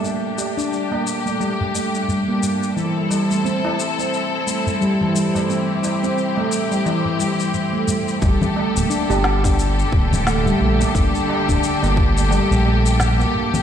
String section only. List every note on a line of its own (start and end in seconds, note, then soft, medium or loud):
0.00 8.18 G3 medium
0.00 2.73 D4 medium
0.00 2.74 G4 medium
2.76 8.18 C4 medium
2.76 8.18 E4 medium
2.76 5.46 A4 medium
5.49 8.19 G4 medium
8.22 13.63 D3 medium
8.22 13.63 G4 medium
8.22 13.63 A4 medium